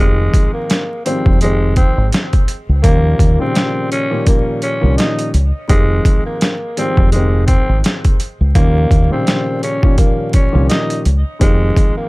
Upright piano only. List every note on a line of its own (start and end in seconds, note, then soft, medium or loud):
0.00 0.81 G#2 medium
0.00 0.81 D#3 medium
0.00 0.81 F3 medium
0.00 0.82 C4 loud
0.00 0.82 G4 medium
1.05 1.39 G#2 medium
1.05 1.39 D#3 medium
1.05 1.39 F3 medium
1.05 1.39 G3 medium
1.05 1.39 C4 loud
1.43 2.42 G#2 medium
1.43 2.42 D#3 medium
1.43 2.42 F3 medium
1.43 2.43 C4 loud
1.43 2.43 G4 medium
2.84 3.35 A#2 medium
2.84 3.35 D#3 medium
2.84 3.36 F3 medium
2.84 3.36 G3 medium
2.84 3.36 C#4 loud
3.39 4.04 A#2 medium
3.39 4.05 C#3 loud
3.39 4.05 D#3 medium
3.39 4.05 F3 medium
3.39 4.05 G3 medium
4.10 4.76 A#2 loud
4.10 4.76 D#3 medium
4.10 4.76 F3 medium
4.10 4.76 G3 medium
4.10 4.76 C#4 loud
4.81 5.29 A#2 loud
4.81 5.29 D#3 medium
4.81 5.29 F3 medium
4.81 5.30 G3 medium
4.81 5.30 C#4 loud
5.68 6.53 G#2 medium
5.68 6.53 D#3 medium
5.68 6.53 F3 medium
5.68 6.53 C4 loud
5.68 6.53 G4 medium
6.77 7.10 G#2 medium
6.77 7.10 D#3 medium
6.77 7.10 F3 medium
6.77 7.11 G3 medium
6.77 7.11 C4 loud
7.15 8.13 G#2 medium
7.15 8.14 D#3 medium
7.15 8.14 F3 medium
7.15 8.14 C4 loud
7.15 8.14 G4 medium
8.55 9.07 A#2 medium
8.55 9.07 D#3 medium
8.55 9.07 F3 medium
8.55 9.07 G3 medium
8.55 9.07 C#4 loud
9.10 9.76 A#2 medium
9.10 9.76 C#3 loud
9.10 9.76 D#3 medium
9.10 9.76 F3 medium
9.10 9.76 G3 medium
9.82 10.47 A#2 loud
9.82 10.48 D#3 medium
9.82 10.48 F3 medium
9.82 10.48 G3 medium
9.82 10.48 C#4 loud
10.52 11.00 A#2 loud
10.52 11.01 D#3 medium
10.52 11.01 F3 medium
10.52 11.01 G3 medium
10.52 11.01 C#4 loud
11.39 12.09 G#2 medium
11.39 12.09 D#3 medium
11.39 12.09 F3 medium
11.39 12.09 C4 loud
11.39 12.09 G4 medium